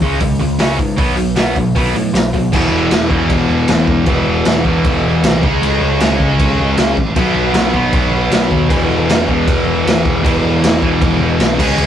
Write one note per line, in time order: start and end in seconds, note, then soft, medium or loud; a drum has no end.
0.02 0.20 C#2 loud
0.02 0.20 C#3 medium
0.02 0.20 G#3 medium
0.02 0.20 C#4 medium
0.02 kick medium
0.02 open hi-hat medium
0.20 0.40 C#2 medium
0.20 0.38 C#3 medium
0.20 0.38 G#3 medium
0.20 kick loud
0.20 open hi-hat medium
0.40 0.59 C#2 medium
0.40 0.57 C#3 medium
0.40 0.57 G#3 medium
0.40 open hi-hat medium
0.59 0.78 C#2 medium
0.59 0.77 C#3 medium
0.59 0.77 G#3 loud
0.59 0.78 C#4 loud
0.59 snare loud
0.59 open hi-hat medium
0.78 0.97 G#2 medium
0.78 0.96 C#3 medium
0.78 0.96 G#3 medium
0.78 kick medium
0.78 open hi-hat medium
0.97 1.36 B1 medium
0.97 1.15 B2 medium
0.97 1.15 F#3 loud
0.97 1.17 B3 loud
0.97 kick loud
0.97 open hi-hat medium
1.16 1.34 B2 medium
1.16 1.34 F#3 medium
1.16 open hi-hat medium
1.36 1.55 B1 medium
1.36 1.54 B2 medium
1.36 1.54 F#3 loud
1.36 1.55 B3 medium
1.36 snare loud
1.36 open hi-hat medium
1.56 1.75 B1 medium
1.56 1.73 B2 medium
1.56 1.74 F#3 medium
1.56 kick medium
1.56 open hi-hat medium
1.75 1.94 B1 medium
1.75 1.93 B2 loud
1.75 1.93 F#3 medium
1.75 1.94 B3 loud
1.75 kick loud
1.75 open hi-hat medium
1.94 2.12 A2 medium
1.94 2.12 B2 medium
1.94 2.13 F#3 medium
1.94 open hi-hat medium
2.13 2.51 B1 medium
2.13 2.32 B2 medium
2.13 2.31 F#3 medium
2.13 snare loud
2.13 open hi-hat medium
2.33 2.51 B2 medium
2.33 2.51 F#3 medium
2.33 kick medium
2.33 open hi-hat medium
2.52 2.70 E1 medium
2.52 3.12 E2 medium
2.52 3.09 B2 loud
2.52 3.09 E3 loud
2.52 kick loud
2.52 crash loud
2.52 crash medium
2.70 2.88 E1 medium
2.91 3.08 E1 medium
2.91 snare loud
2.91 crash medium
3.10 3.28 E1 loud
3.10 4.05 E2 medium
3.10 4.06 B2 medium
3.10 4.08 E3 medium
3.10 kick medium
3.30 3.48 E1 medium
3.30 kick loud
3.30 crash medium
3.48 3.66 E1 medium
3.68 3.86 E1 loud
3.68 snare loud
3.68 crash medium
3.88 4.05 E1 medium
3.88 kick medium
4.06 4.25 E1 loud
4.06 4.63 E2 loud
4.06 4.64 B2 loud
4.06 4.65 E3 loud
4.06 kick loud
4.06 crash medium
4.27 4.44 E1 medium
4.45 4.63 E1 medium
4.45 snare loud
4.45 crash medium
4.65 4.83 E1 loud
4.65 5.42 E2 medium
4.65 5.41 B2 medium
4.65 5.41 E3 loud
4.65 kick medium
4.85 5.02 E1 loud
4.85 kick loud
4.85 crash medium
5.04 5.21 E1 loud
5.24 5.41 C2 loud
5.24 snare loud
5.24 crash medium
5.42 5.61 C#2 medium
5.42 5.99 C#3 loud
5.42 6.00 G#3 loud
5.42 6.00 C#4 loud
5.42 kick loud
5.62 5.79 C#2 medium
5.62 crash medium
5.80 5.98 C#2 medium
6.00 6.18 C#2 loud
6.00 6.95 C#3 medium
6.00 6.96 G#3 medium
6.00 6.96 C#4 medium
6.00 snare loud
6.00 crash medium
6.20 6.37 C#2 loud
6.20 kick medium
6.39 6.56 C#2 loud
6.39 kick loud
6.39 crash medium
6.59 6.76 C#2 loud
6.77 6.95 C#2 loud
6.77 snare loud
6.77 crash medium
6.97 7.15 A1 medium
6.97 kick medium
7.16 7.33 B1 loud
7.16 7.73 B2 loud
7.16 7.73 F#3 loud
7.16 7.73 B3 loud
7.16 kick loud
7.16 crash medium
7.34 7.52 B1 loud
7.53 7.71 B1 medium
7.53 snare loud
7.53 crash medium
7.73 7.91 B1 loud
7.73 8.69 B2 medium
7.73 8.69 F#3 medium
7.73 11.23 B3 medium
7.73 kick medium
7.93 8.11 B1 loud
7.93 kick loud
7.93 crash medium
8.12 8.29 B1 loud
8.30 8.48 B1 medium
8.30 snare loud
8.30 crash medium
8.51 8.69 D#2 medium
8.51 kick medium
8.69 8.88 E1 medium
8.69 9.29 E2 loud
8.69 9.26 B2 loud
8.69 9.27 E3 loud
8.69 kick loud
8.69 crash medium
8.89 9.07 E1 loud
9.09 9.27 E1 loud
9.09 snare loud
9.09 crash medium
9.27 9.46 E1 loud
9.27 10.22 E2 medium
9.27 10.23 B2 medium
9.27 10.25 E3 medium
9.27 kick medium
9.48 9.65 E1 loud
9.48 kick loud
9.48 crash medium
9.66 9.83 E1 medium
9.85 10.03 E1 loud
9.85 snare loud
9.85 crash medium
10.05 10.23 E1 medium
10.05 kick medium
10.23 10.42 E1 medium
10.23 10.80 E2 loud
10.23 10.81 B2 medium
10.23 10.81 E3 loud
10.23 kick loud
10.23 crash medium
10.43 10.60 E1 loud
10.62 10.80 E1 medium
10.62 snare loud
10.62 crash medium
10.82 11.00 E1 loud
10.82 11.59 E2 medium
10.82 11.58 B2 medium
10.82 11.58 E3 medium
10.82 kick medium
11.01 11.19 E1 loud
11.01 kick loud
11.01 crash medium
11.20 11.37 E1 loud
11.39 11.57 B1 medium
11.39 snare loud
11.39 crash medium
11.58 11.77 C#2 medium
11.58 11.86 C#3 loud
11.58 11.86 G#3 loud
11.58 11.86 C#4 loud
11.58 kick loud
11.58 crash loud
11.77 11.86 C#2 loud
11.77 crash medium